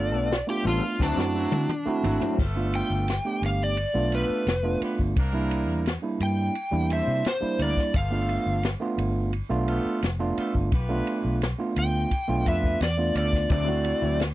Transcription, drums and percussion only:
0.31 snare loud
0.31 closed hi-hat medium
0.65 snare soft
0.65 closed hi-hat medium
1.00 kick medium
1.00 snare medium
1.19 snare medium
1.52 high tom medium
1.69 mid tom medium
2.04 floor tom loud
2.21 floor tom medium
2.39 kick loud
2.39 crash loud
2.74 ride bell medium
3.08 snare medium
3.08 ride bell medium
3.43 snare soft
3.43 ride bell medium
3.77 ride bell medium
4.12 ride bell medium
4.47 snare loud
4.47 ride bell medium
4.82 ride bell medium
4.99 kick medium
5.16 kick loud
5.16 ride bell medium
5.51 ride bell medium
5.86 snare medium
5.86 ride bell medium
6.20 ride bell medium
6.55 ride bell medium
6.90 ride bell medium
7.25 snare loud
7.25 ride bell medium
7.59 ride bell medium
7.77 kick medium
7.77 snare soft
7.94 kick loud
7.94 ride bell medium
8.29 ride bell medium
8.63 snare loud
8.63 ride bell medium
8.98 ride bell medium
9.33 ride bell medium
9.68 ride bell medium
10.03 snare loud
10.03 ride bell medium
10.38 ride bell medium
10.55 kick medium
10.72 kick loud
10.72 ride bell medium
11.07 ride bell medium
11.42 snare loud
11.42 ride bell medium
11.76 ride bell medium
12.11 kick medium
12.11 ride bell medium
12.46 kick medium
12.46 ride bell medium
12.63 kick medium
12.81 snare loud
12.81 ride bell medium
13.15 ride bell medium
13.33 kick medium
13.33 snare soft
13.50 kick loud
13.50 ride bell medium
13.85 ride bell medium
14.20 snare loud
14.20 ride bell medium

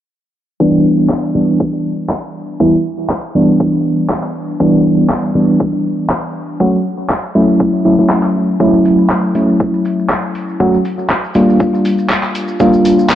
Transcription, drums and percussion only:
0.60 kick loud
1.10 kick loud
1.10 clap loud
1.60 kick loud
2.10 kick loud
2.10 clap loud
2.60 kick loud
3.10 kick loud
3.10 clap loud
3.60 kick loud
4.10 kick loud
4.10 clap loud
4.23 clap soft
4.60 kick loud
5.10 kick loud
5.10 clap loud
5.60 kick loud
6.10 kick loud
6.10 clap loud
6.60 kick loud
7.10 kick loud
7.10 clap loud
7.60 kick loud
8.10 kick loud
8.10 clap loud
8.23 clap soft
8.60 kick loud
8.60 maracas soft
8.74 maracas soft
8.85 open hi-hat medium
8.85 maracas medium
8.98 maracas soft
9.10 kick loud
9.10 clap loud
9.10 maracas soft
9.24 maracas soft
9.35 open hi-hat loud
9.35 maracas medium
9.49 maracas soft
9.60 kick loud
9.60 maracas soft
9.74 maracas soft
9.85 open hi-hat medium
9.85 maracas medium
9.99 maracas soft
10.10 kick loud
10.10 clap loud
10.10 maracas soft
10.35 open hi-hat loud
10.35 maracas medium
10.49 maracas soft
10.60 kick loud
10.60 maracas soft
10.74 maracas soft
10.85 open hi-hat medium
10.85 maracas medium
10.99 maracas soft
11.10 kick loud
11.10 clap loud
11.10 maracas soft
11.24 maracas soft
11.35 open hi-hat loud
11.35 maracas medium
11.49 maracas soft
11.60 kick loud
11.60 maracas soft
11.74 maracas soft
11.85 open hi-hat medium
11.85 maracas medium
11.98 maracas soft
12.10 kick loud
12.10 clap loud
12.10 maracas soft
12.23 clap soft
12.35 open hi-hat medium
12.35 maracas medium
12.48 maracas soft
12.60 kick loud
12.60 maracas medium
12.73 maracas soft
12.85 open hi-hat medium
12.85 maracas medium
12.99 maracas soft
13.09 kick loud
13.09 clap loud
13.09 maracas soft

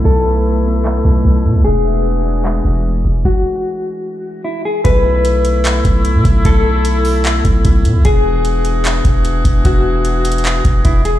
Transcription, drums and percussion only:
0.65 open hi-hat soft
0.85 clap loud
2.45 clap loud
3.25 kick loud
3.25 snare medium
4.85 kick loud
4.85 closed hi-hat medium
5.25 closed hi-hat medium
5.45 closed hi-hat medium
5.65 clap loud
5.65 closed hi-hat medium
5.85 kick medium
5.85 closed hi-hat medium
6.05 closed hi-hat medium
6.25 kick medium
6.25 closed hi-hat medium
6.45 kick loud
6.45 closed hi-hat medium
6.85 closed hi-hat medium
7.05 open hi-hat medium
7.25 clap loud
7.25 closed hi-hat medium
7.45 kick medium
7.45 closed hi-hat medium
7.65 kick loud
7.65 closed hi-hat medium
7.85 closed hi-hat medium
8.05 kick loud
8.05 closed hi-hat medium
8.45 closed hi-hat medium
8.65 closed hi-hat medium
8.85 clap loud
8.85 closed hi-hat medium
9.05 kick medium
9.05 closed hi-hat medium
9.25 closed hi-hat medium
9.45 kick medium
9.45 closed hi-hat medium
9.65 kick loud
9.65 closed hi-hat medium
10.05 closed hi-hat medium
10.25 closed hi-hat medium
10.25 open hi-hat medium
10.32 closed hi-hat medium
10.38 closed hi-hat soft
10.45 clap loud
10.45 closed hi-hat medium
10.65 kick medium
10.65 closed hi-hat medium
10.85 kick loud
10.85 closed hi-hat medium
11.05 closed hi-hat medium

